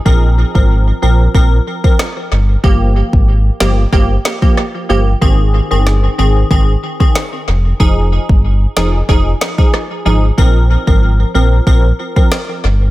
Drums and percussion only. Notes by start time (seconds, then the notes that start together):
0.06 kick
0.55 kick
1.35 kick
1.84 kick
1.99 cross-stick, snare
2.64 kick
3.13 kick
3.60 snare
3.93 kick
4.25 snare
4.42 kick
4.57 cross-stick
5.22 kick
5.87 cross-stick, snare
6.51 kick
7.00 kick
7.15 snare
7.80 kick
8.29 kick
8.77 snare
9.09 kick
9.41 snare
9.58 kick
9.74 cross-stick
10.38 kick
10.87 kick
11.67 kick
12.16 kick
12.32 cross-stick, snare